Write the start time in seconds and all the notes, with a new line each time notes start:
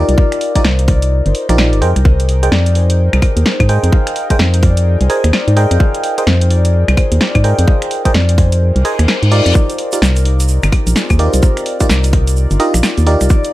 Already playing: D#4 F4 G4 A#4 C5 D5
0.09 C2, closed hi-hat
0.17 D5 F5, kick
0.32 finger snap, closed hi-hat
0.41 open hi-hat
0.55 D#4 F4 G4 A#4 C5 D5 D#5, kick, closed hi-hat
0.65 C2, snare
0.79 closed hi-hat
0.88 A#4 D5, kick, open hi-hat
1.02 closed hi-hat
1.26 G1 D#4 C5, closed hi-hat
1.35 open hi-hat
1.49 A#1 D#4 F4 G4 A#4 D5, finger snap, closed hi-hat
1.58 G4 A#4, snare, claves
1.73 G1, closed hi-hat
1.82 F2 G4 G#4 A#4 C5 D#5 G5, open hi-hat
1.96 C2, finger snap, closed hi-hat
2.05 C5 D#5, kick
2.20 closed hi-hat
2.29 open hi-hat
2.43 F4 G#4 A#4 C5 D5 D#5 G5, closed hi-hat
2.52 F2, snare
2.66 closed hi-hat
2.75 G#4 C5, open hi-hat
2.90 closed hi-hat
3.13 C2 G4 A#4, finger snap, closed hi-hat, claves
3.22 kick, open hi-hat, claves
3.37 D#2, closed hi-hat
3.46 G#4 C5, snare
3.60 G#2, kick, closed hi-hat, claves
3.69 G#4 A#4 C5 D#5 G5, open hi-hat
3.83 F2, closed hi-hat
3.93 G#4 F5, kick
4.07 finger snap, closed hi-hat
4.16 open hi-hat
4.30 G#4 A#4 C5 D#5 G5, kick, closed hi-hat
4.39 F2, snare
4.54 closed hi-hat
4.63 F4 D5, kick, open hi-hat
4.77 closed hi-hat
5.01 C2 G#4 C5, closed hi-hat
5.10 G#4 A#4 C5 D#5 G#5, open hi-hat
5.24 D#2, finger snap, closed hi-hat
5.33 F4 D5, snare, claves
5.48 G#2, closed hi-hat
5.56 G#4 A#4 C5 D#5 F5 G5, open hi-hat
5.71 F2, finger snap, closed hi-hat
5.79 G#4 F5, kick
5.95 closed hi-hat
6.04 open hi-hat
6.18 G#4 A#4 C5 D#5 G5, closed hi-hat
6.27 F2, snare
6.41 closed hi-hat
6.50 F4 D5, open hi-hat
6.65 closed hi-hat
6.88 C2 G#4 C5, finger snap, closed hi-hat, claves
6.97 kick, open hi-hat, claves
7.12 D#2, closed hi-hat
7.20 F4 D5, snare
7.35 G#2, kick, closed hi-hat, claves
7.44 G#4 A#4 C5 D#5 F5 G5, open hi-hat
7.59 F2, closed hi-hat
7.68 C5 D#5, kick
7.82 finger snap, closed hi-hat
7.91 open hi-hat
8.05 F4 G#4 A#4 C5 D5 D#5 G5, kick, closed hi-hat
8.14 F2, snare
8.29 closed hi-hat
8.38 G#4 C5, kick, open hi-hat
8.52 closed hi-hat
8.61 reverse cymbal
8.75 C2 G4 A#4, closed hi-hat
8.85 G#4 A#4 C5 D#5 G#5, open hi-hat
8.99 D#2, finger snap, closed hi-hat
9.08 G#4 C5, snare, claves
9.23 G#2, closed hi-hat
9.32 D#4 F4 G4 A#4 D5, open hi-hat
9.46 F2, finger snap, closed hi-hat
9.55 D#4 F4 A#4 C5 D5, kick, shaker
9.70 closed hi-hat, shaker
9.79 open hi-hat
9.92 D#4 F4 G4 A#4 D5, closed hi-hat, shaker
10.02 C2, snare, shaker
10.16 closed hi-hat, shaker
10.25 D#4 G4, open hi-hat
10.40 closed hi-hat, shaker
10.48 shaker
10.63 G1 D#4 G4, finger snap, closed hi-hat, claves, shaker
10.72 kick, open hi-hat, claves
10.87 A#1, closed hi-hat, shaker
10.96 C4 G#4, snare, shaker
11.10 D#2, kick, closed hi-hat, claves, shaker
11.19 D#4 F4 G4 A#4 C5 D5, open hi-hat
11.34 C2, closed hi-hat, shaker
11.43 G4 A#4, kick, shaker
11.57 finger snap, closed hi-hat, shaker
11.66 open hi-hat
11.80 D#4 F4 G4 A#4 D5, kick, closed hi-hat, shaker
11.89 C2, snare, shaker
12.04 closed hi-hat, shaker
12.13 D#4 G4, kick, open hi-hat
12.27 closed hi-hat, shaker
12.36 shaker
12.51 G1 D4 F4, closed hi-hat, shaker
12.60 D#4 F4 G4 A#4 D#5, open hi-hat
12.74 A#1, finger snap, closed hi-hat, shaker
12.83 D#4 G4, snare, claves, shaker
12.98 D#2, closed hi-hat, shaker
13.07 D#4 F4 G4 A#4 D5, open hi-hat
13.21 C2, finger snap, closed hi-hat, shaker
13.29 A#4 C5 D5, kick, shaker
13.44 closed hi-hat, shaker